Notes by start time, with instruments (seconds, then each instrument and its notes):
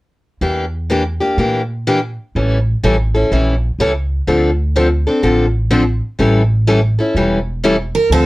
0.41 upright bass E2, steel-string acoustic guitar E3 A#3 D4 G4
0.90 steel-string acoustic guitar E3 A#3 D4 G4
1.20 steel-string acoustic guitar A#3 D4 G4
1.38 upright bass A#2, steel-string acoustic guitar E3 A#3 D4 G4
1.87 steel-string acoustic guitar E3 A#3 D4 G4
2.35 upright bass A1, steel-string acoustic guitar E3 G3 C#4 E4 A4
2.83 upright bass A1, steel-string acoustic guitar E3 G3 C#4 E4 A4
3.14 steel-string acoustic guitar C#4 E4 A4
3.31 upright bass A#1, steel-string acoustic guitar E3 G3 C#4 E4 A4
3.78 upright bass C#2, steel-string acoustic guitar E3 G3 C#4 E4 A4
4.27 upright bass D2, steel-string acoustic guitar D3 F3 C4 D4 A4
4.76 steel-string acoustic guitar D3 F3 C4 D4 A4
5.07 steel-string acoustic guitar C4 D4 A4
5.23 upright bass A1, steel-string acoustic guitar D3 F3 C4 D4 A4
5.71 steel-string acoustic guitar D3 F3 C4 D4 A4
6.19 upright bass A1, steel-string acoustic guitar E3 G3 C#4 E4 A4
6.67 steel-string acoustic guitar E3 G3 C#4 E4 A4
6.99 steel-string acoustic guitar C#4 E4 A4
7.15 upright bass E1, steel-string acoustic guitar E3 G3 C#4 E4 A4
7.64 steel-string acoustic guitar E3 G3 C#4 E4 A4
7.95 steel-string acoustic guitar A#4
8.10 upright bass D2, steel-string acoustic guitar D3 F3 C4 D4 A4